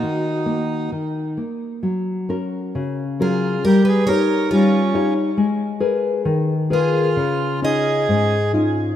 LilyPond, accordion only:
\new Staff \with { instrumentName = "Accordion" } { \time 2/4 \key ees \minor \tempo 4 = 67 ees'4 r4 | \key fis \major r4. eis'8 | g'16 gis'16 ais'8 cis'8. r16 | r4. eis'8~ |
eis'8 gis'4 r8 | }